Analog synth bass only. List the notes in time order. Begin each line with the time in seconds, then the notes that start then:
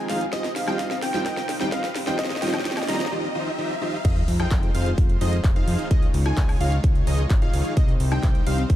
4.05 F2
4.28 F2
4.51 F2
4.75 F2
4.98 F2
5.21 F2
5.44 F1
5.68 F2
5.91 C#2
6.14 C#2
6.37 C#2
6.61 C#2
6.84 C#2
7.07 C#2
7.30 G#1
7.54 C#2
7.77 C2
8.00 C2
8.23 C2
8.47 C2
8.70 C2